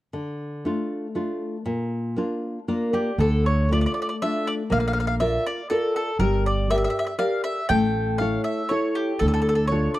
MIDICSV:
0, 0, Header, 1, 4, 480
1, 0, Start_track
1, 0, Key_signature, -1, "minor"
1, 0, Tempo, 508906
1, 133, Time_signature, 3, 2, 24, 8
1, 3970, Tempo, 501253
1, 9508, End_track
2, 0, Start_track
2, 0, Title_t, "Mandolin"
2, 0, Program_c, 0, 25
2, 2770, Note_on_c, 0, 67, 48
2, 2992, Note_off_c, 0, 67, 0
2, 3022, Note_on_c, 0, 69, 68
2, 3248, Note_off_c, 0, 69, 0
2, 3264, Note_on_c, 0, 73, 61
2, 3502, Note_off_c, 0, 73, 0
2, 3514, Note_on_c, 0, 74, 69
2, 3577, Note_off_c, 0, 74, 0
2, 3595, Note_on_c, 0, 74, 53
2, 3631, Note_off_c, 0, 74, 0
2, 3642, Note_on_c, 0, 74, 57
2, 3704, Note_off_c, 0, 74, 0
2, 3716, Note_on_c, 0, 74, 48
2, 3779, Note_off_c, 0, 74, 0
2, 3790, Note_on_c, 0, 74, 56
2, 3846, Note_off_c, 0, 74, 0
2, 3857, Note_on_c, 0, 74, 51
2, 3922, Note_off_c, 0, 74, 0
2, 3981, Note_on_c, 0, 76, 76
2, 4223, Note_on_c, 0, 74, 66
2, 4228, Note_off_c, 0, 76, 0
2, 4285, Note_off_c, 0, 74, 0
2, 4462, Note_on_c, 0, 77, 67
2, 4522, Note_off_c, 0, 77, 0
2, 4536, Note_on_c, 0, 77, 55
2, 4596, Note_off_c, 0, 77, 0
2, 4609, Note_on_c, 0, 77, 62
2, 4652, Note_off_c, 0, 77, 0
2, 4663, Note_on_c, 0, 77, 59
2, 4716, Note_off_c, 0, 77, 0
2, 4727, Note_on_c, 0, 77, 62
2, 4784, Note_off_c, 0, 77, 0
2, 4796, Note_on_c, 0, 77, 65
2, 4863, Note_off_c, 0, 77, 0
2, 4919, Note_on_c, 0, 76, 68
2, 5150, Note_off_c, 0, 76, 0
2, 5173, Note_on_c, 0, 74, 66
2, 5388, Note_off_c, 0, 74, 0
2, 5397, Note_on_c, 0, 69, 69
2, 5627, Note_off_c, 0, 69, 0
2, 5647, Note_on_c, 0, 69, 66
2, 5862, Note_off_c, 0, 69, 0
2, 5872, Note_on_c, 0, 70, 76
2, 6102, Note_off_c, 0, 70, 0
2, 6128, Note_on_c, 0, 74, 69
2, 6343, Note_off_c, 0, 74, 0
2, 6360, Note_on_c, 0, 76, 83
2, 6417, Note_off_c, 0, 76, 0
2, 6429, Note_on_c, 0, 76, 52
2, 6482, Note_off_c, 0, 76, 0
2, 6493, Note_on_c, 0, 76, 63
2, 6535, Note_off_c, 0, 76, 0
2, 6547, Note_on_c, 0, 76, 55
2, 6621, Note_off_c, 0, 76, 0
2, 6633, Note_on_c, 0, 76, 64
2, 6694, Note_off_c, 0, 76, 0
2, 6706, Note_on_c, 0, 76, 49
2, 6773, Note_off_c, 0, 76, 0
2, 6822, Note_on_c, 0, 77, 76
2, 7058, Note_off_c, 0, 77, 0
2, 7062, Note_on_c, 0, 76, 74
2, 7299, Note_off_c, 0, 76, 0
2, 7303, Note_on_c, 0, 79, 91
2, 7757, Note_off_c, 0, 79, 0
2, 7775, Note_on_c, 0, 77, 66
2, 8017, Note_off_c, 0, 77, 0
2, 8022, Note_on_c, 0, 76, 59
2, 8260, Note_on_c, 0, 73, 64
2, 8279, Note_off_c, 0, 76, 0
2, 8503, Note_off_c, 0, 73, 0
2, 8512, Note_on_c, 0, 67, 64
2, 8741, Note_off_c, 0, 67, 0
2, 8742, Note_on_c, 0, 69, 68
2, 8813, Note_off_c, 0, 69, 0
2, 8825, Note_on_c, 0, 69, 55
2, 8868, Note_off_c, 0, 69, 0
2, 8880, Note_on_c, 0, 69, 64
2, 8945, Note_off_c, 0, 69, 0
2, 8957, Note_on_c, 0, 69, 56
2, 9013, Note_off_c, 0, 69, 0
2, 9025, Note_on_c, 0, 69, 65
2, 9076, Note_off_c, 0, 69, 0
2, 9087, Note_on_c, 0, 69, 58
2, 9178, Note_off_c, 0, 69, 0
2, 9204, Note_on_c, 0, 73, 64
2, 9456, Note_off_c, 0, 73, 0
2, 9460, Note_on_c, 0, 74, 61
2, 9508, Note_off_c, 0, 74, 0
2, 9508, End_track
3, 0, Start_track
3, 0, Title_t, "Nylon-string guitar"
3, 0, Program_c, 1, 24
3, 125, Note_on_c, 1, 50, 45
3, 599, Note_off_c, 1, 50, 0
3, 613, Note_on_c, 1, 57, 35
3, 621, Note_on_c, 1, 62, 32
3, 625, Note_on_c, 1, 65, 38
3, 999, Note_off_c, 1, 57, 0
3, 1003, Note_off_c, 1, 62, 0
3, 1006, Note_off_c, 1, 65, 0
3, 1084, Note_on_c, 1, 57, 32
3, 1089, Note_on_c, 1, 62, 30
3, 1091, Note_on_c, 1, 65, 33
3, 1471, Note_off_c, 1, 57, 0
3, 1474, Note_off_c, 1, 62, 0
3, 1474, Note_off_c, 1, 65, 0
3, 1561, Note_on_c, 1, 46, 51
3, 2029, Note_off_c, 1, 46, 0
3, 2041, Note_on_c, 1, 58, 38
3, 2052, Note_on_c, 1, 62, 39
3, 2056, Note_on_c, 1, 65, 41
3, 2428, Note_off_c, 1, 58, 0
3, 2434, Note_off_c, 1, 62, 0
3, 2437, Note_off_c, 1, 65, 0
3, 2530, Note_on_c, 1, 58, 33
3, 2530, Note_on_c, 1, 65, 39
3, 2531, Note_on_c, 1, 70, 43
3, 2533, Note_on_c, 1, 62, 33
3, 2758, Note_off_c, 1, 70, 0
3, 2765, Note_on_c, 1, 74, 56
3, 2916, Note_off_c, 1, 58, 0
3, 2916, Note_off_c, 1, 65, 0
3, 2918, Note_off_c, 1, 62, 0
3, 2990, Note_off_c, 1, 74, 0
3, 3007, Note_on_c, 1, 50, 51
3, 3476, Note_off_c, 1, 50, 0
3, 3501, Note_on_c, 1, 57, 39
3, 3503, Note_on_c, 1, 62, 34
3, 3513, Note_on_c, 1, 65, 45
3, 3878, Note_off_c, 1, 62, 0
3, 3879, Note_off_c, 1, 57, 0
3, 3886, Note_off_c, 1, 65, 0
3, 3981, Note_on_c, 1, 57, 37
3, 3985, Note_on_c, 1, 62, 33
3, 3988, Note_on_c, 1, 65, 43
3, 4359, Note_off_c, 1, 57, 0
3, 4360, Note_off_c, 1, 62, 0
3, 4363, Note_off_c, 1, 65, 0
3, 4439, Note_on_c, 1, 58, 60
3, 4907, Note_off_c, 1, 58, 0
3, 4924, Note_on_c, 1, 70, 38
3, 4928, Note_on_c, 1, 65, 39
3, 4935, Note_on_c, 1, 74, 47
3, 5307, Note_off_c, 1, 70, 0
3, 5310, Note_off_c, 1, 65, 0
3, 5311, Note_off_c, 1, 74, 0
3, 5405, Note_on_c, 1, 65, 35
3, 5408, Note_on_c, 1, 74, 45
3, 5411, Note_on_c, 1, 70, 35
3, 5785, Note_off_c, 1, 65, 0
3, 5786, Note_off_c, 1, 74, 0
3, 5789, Note_off_c, 1, 70, 0
3, 5883, Note_on_c, 1, 55, 62
3, 6344, Note_off_c, 1, 55, 0
3, 6355, Note_on_c, 1, 67, 42
3, 6359, Note_on_c, 1, 70, 37
3, 6364, Note_on_c, 1, 74, 49
3, 6739, Note_off_c, 1, 67, 0
3, 6742, Note_off_c, 1, 70, 0
3, 6743, Note_off_c, 1, 74, 0
3, 6818, Note_on_c, 1, 67, 33
3, 6820, Note_on_c, 1, 70, 29
3, 6824, Note_on_c, 1, 74, 42
3, 7209, Note_off_c, 1, 67, 0
3, 7209, Note_off_c, 1, 70, 0
3, 7213, Note_off_c, 1, 74, 0
3, 7313, Note_on_c, 1, 57, 56
3, 7782, Note_off_c, 1, 57, 0
3, 7796, Note_on_c, 1, 64, 39
3, 7803, Note_on_c, 1, 69, 36
3, 7806, Note_on_c, 1, 73, 42
3, 8186, Note_off_c, 1, 64, 0
3, 8188, Note_off_c, 1, 69, 0
3, 8192, Note_off_c, 1, 73, 0
3, 8279, Note_on_c, 1, 64, 35
3, 8283, Note_on_c, 1, 69, 34
3, 8286, Note_on_c, 1, 73, 38
3, 8669, Note_off_c, 1, 64, 0
3, 8670, Note_off_c, 1, 69, 0
3, 8673, Note_off_c, 1, 73, 0
3, 8767, Note_on_c, 1, 50, 45
3, 9233, Note_off_c, 1, 50, 0
3, 9242, Note_on_c, 1, 62, 42
3, 9246, Note_on_c, 1, 65, 38
3, 9248, Note_on_c, 1, 69, 47
3, 9508, Note_off_c, 1, 62, 0
3, 9508, Note_off_c, 1, 65, 0
3, 9508, Note_off_c, 1, 69, 0
3, 9508, End_track
4, 0, Start_track
4, 0, Title_t, "Upright bass"
4, 0, Program_c, 2, 32
4, 3003, Note_on_c, 2, 38, 82
4, 3628, Note_off_c, 2, 38, 0
4, 4454, Note_on_c, 2, 34, 83
4, 5073, Note_off_c, 2, 34, 0
4, 5868, Note_on_c, 2, 31, 74
4, 6493, Note_off_c, 2, 31, 0
4, 7312, Note_on_c, 2, 33, 74
4, 7942, Note_off_c, 2, 33, 0
4, 8759, Note_on_c, 2, 38, 82
4, 9386, Note_off_c, 2, 38, 0
4, 9508, End_track
0, 0, End_of_file